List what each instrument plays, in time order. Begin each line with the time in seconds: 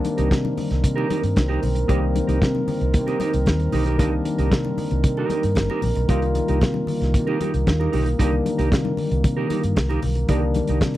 Already playing: tine electric piano D#3 G3 A#3 C4 D4, french horn section D#3 C4 A#4
0.04 muted clean electric guitar stroke, closed hi-hat, high conga
0.17 fingered electric bass C2, clean electric guitar D#4 G4 A#4, closed hi-hat
0.31 fingered electric bass C3, muted clean electric guitar stroke, kick, snare, closed hi-hat, muted conga
0.44 muted clean electric guitar stroke, muted conga, high conga
0.57 open hi-hat, high conga, low conga
0.71 fingered electric bass C2, muted clean electric guitar stroke, snare, closed hi-hat
0.83 fingered electric bass C3, muted clean electric guitar stroke, kick, closed hi-hat, muted conga
0.96 clean electric guitar D#4 G4 A#4, muted conga
1.10 clean electric guitar D#4 G4 A#4, closed hi-hat, high conga
1.23 fingered electric bass G2, muted clean electric guitar stroke, closed hi-hat
1.36 fingered electric bass C2, muted clean electric guitar stroke, kick, snare, closed hi-hat, high conga
1.48 clean electric guitar D#4 G4 A#4
1.62 fingered electric bass B1, muted clean electric guitar stroke, open hi-hat, high conga, low conga
1.75 muted clean electric guitar stroke, closed hi-hat
1.88 fingered electric bass C2, tine electric piano D#3 G3 A#3 C4, clean electric guitar D#4 G4 A#4, kick, closed hi-hat, muted conga
2.02 muted clean electric guitar stroke
2.15 muted clean electric guitar stroke, closed hi-hat, high conga
2.27 fingered electric bass C2, clean electric guitar D#4 G4 A#4, closed hi-hat
2.41 fingered electric bass C3, muted clean electric guitar stroke, kick, snare, closed hi-hat, muted conga
2.54 muted clean electric guitar stroke, high conga
2.68 open hi-hat, high conga, low conga
2.81 fingered electric bass C2, muted clean electric guitar stroke, closed hi-hat
2.94 fingered electric bass C3, muted clean electric guitar stroke, kick, closed hi-hat
3.07 clean electric guitar D#4 G4 A#4, closed hi-hat, muted conga
3.20 clean electric guitar D#4 G4 A#4, closed hi-hat, high conga
3.33 fingered electric bass C2, muted clean electric guitar stroke, closed hi-hat
3.46 fingered electric bass D#2, muted clean electric guitar stroke, kick, snare, closed hi-hat, high conga
3.59 muted clean electric guitar stroke, closed hi-hat
3.72 fingered electric bass B1, clean electric guitar D#4 G4 A#4, open hi-hat, high conga, low conga
3.86 clean electric guitar D#4 G4 A#4, closed hi-hat
3.98 fingered electric bass C2, tine electric piano D#3 G3 A#3 D4, clean electric guitar D#4 G4 A#4, kick, closed hi-hat, muted conga, low conga
4.12 muted clean electric guitar stroke
4.25 muted clean electric guitar stroke, closed hi-hat, high conga
4.38 fingered electric bass C2, clean electric guitar D#4 G4 A#4, closed hi-hat
4.52 fingered electric bass C3, muted clean electric guitar stroke, kick, snare, closed hi-hat, muted conga
4.65 muted clean electric guitar stroke, muted conga, high conga
4.78 open hi-hat, high conga, low conga
4.91 fingered electric bass C2, muted clean electric guitar stroke, closed hi-hat
5.04 fingered electric bass C3, muted clean electric guitar stroke, kick, closed hi-hat, muted conga
5.17 clean electric guitar D#4 G4 A#4, muted conga
5.30 clean electric guitar D#4 G4 A#4, closed hi-hat, high conga
5.43 fingered electric bass G2, muted clean electric guitar stroke, closed hi-hat
5.55 fingered electric bass G1, muted clean electric guitar stroke, kick, snare, closed hi-hat, muted conga, high conga
5.70 clean electric guitar D#4 G4 A#4, muted conga
5.82 fingered electric bass A#1, muted clean electric guitar stroke, open hi-hat, high conga, low conga
5.95 fingered electric bass B1, muted clean electric guitar stroke, closed hi-hat
6.08 fingered electric bass C2, tine electric piano D#3 G3 A#3 F4, french horn section A#3, clean electric guitar D#4 G4 A#4, kick, closed hi-hat
6.22 muted clean electric guitar stroke, closed hi-hat
6.35 muted clean electric guitar stroke, closed hi-hat, high conga
6.48 fingered electric bass C2, clean electric guitar D#4 G4 A#4, closed hi-hat
6.61 fingered electric bass C3, muted clean electric guitar stroke, kick, snare, closed hi-hat, muted conga
6.74 muted clean electric guitar stroke, muted conga, high conga
6.87 open hi-hat, high conga, low conga
7.01 fingered electric bass C2, muted clean electric guitar stroke, snare, closed hi-hat
7.14 fingered electric bass C3, muted clean electric guitar stroke, kick, closed hi-hat
7.27 clean electric guitar D#4 G4 A#4, muted conga
7.40 clean electric guitar D#4 G4 A#4, closed hi-hat, high conga
7.53 fingered electric bass C2, muted clean electric guitar stroke, closed hi-hat
7.66 fingered electric bass D#2, muted clean electric guitar stroke, kick, snare, closed hi-hat, high conga
7.80 clean electric guitar D#4 G4 A#4, muted conga
7.92 fingered electric bass B1, clean electric guitar D#4 G4 A#4, open hi-hat, high conga, low conga
8.06 muted clean electric guitar stroke, closed hi-hat
8.18 fingered electric bass C2, tine electric piano D3 G3 A#3 D4, clean electric guitar D#4 G4 A#4, kick, closed hi-hat
8.25 tine electric piano D#3
8.32 muted clean electric guitar stroke
8.45 muted clean electric guitar stroke, closed hi-hat, high conga
8.58 fingered electric bass C2, clean electric guitar D#4 G4 A#4, closed hi-hat
8.71 fingered electric bass C3, muted clean electric guitar stroke, kick, snare, closed hi-hat, muted conga
8.85 muted clean electric guitar stroke, muted conga, high conga
8.97 open hi-hat, high conga, low conga
9.11 fingered electric bass C2, muted clean electric guitar stroke, closed hi-hat
9.24 fingered electric bass C3, muted clean electric guitar stroke, kick, closed hi-hat, muted conga
9.37 clean electric guitar D#4 G4 A#4
9.50 clean electric guitar D#4 G4 A#4, closed hi-hat, high conga
9.63 fingered electric bass G2, muted clean electric guitar stroke, closed hi-hat
9.75 fingered electric bass C2, muted clean electric guitar stroke, kick, snare, closed hi-hat, muted conga, high conga
9.89 clean electric guitar D#4 G4 A#4, closed hi-hat, muted conga
10.02 fingered electric bass B1, muted clean electric guitar stroke, open hi-hat, high conga, low conga
10.15 muted clean electric guitar stroke, closed hi-hat
10.27 fingered electric bass C2, tine electric piano D3 G3 A#3 D4, clean electric guitar D#4 G4 A#4, kick, closed hi-hat, muted conga
10.34 tine electric piano D#3
10.42 muted clean electric guitar stroke
10.54 muted clean electric guitar stroke, closed hi-hat, high conga
10.67 fingered electric bass C2, clean electric guitar D#4 G4 A#4, closed hi-hat
10.81 fingered electric bass C3, muted clean electric guitar stroke, kick, snare, closed hi-hat, muted conga
10.94 closed hi-hat